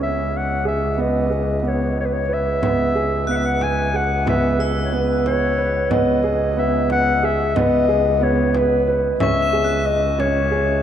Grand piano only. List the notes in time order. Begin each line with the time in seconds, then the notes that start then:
0.00 C#4
0.65 G#4
0.98 B3
1.30 G#4
1.63 B3
2.29 B4
2.62 B3
2.95 G#4
3.28 B3
3.94 G#4
4.26 B3
4.59 G#4
4.92 B3
5.58 B4
5.90 B3
6.24 G#4
6.57 B3
7.23 G#4
7.56 B3
7.88 G#4
8.21 B3
8.87 B4
9.20 C#4
9.53 G#4
10.19 C#4
10.51 G#4